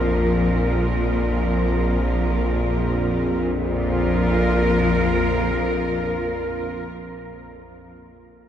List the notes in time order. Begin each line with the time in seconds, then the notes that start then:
Already playing: A#1 F2 A#2 F3 F4 A#4 F5
3.36 A#1 F2 A#2
3.52 F3
3.68 F4
3.82 A#4